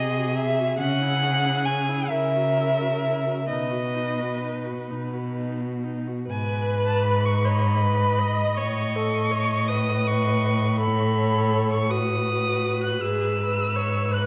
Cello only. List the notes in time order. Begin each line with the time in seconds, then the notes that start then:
Already playing: C3
0.78 C#3
2.09 C#3
3.49 B2
4.91 B2
6.28 G#2
8.57 A2
13.02 G#2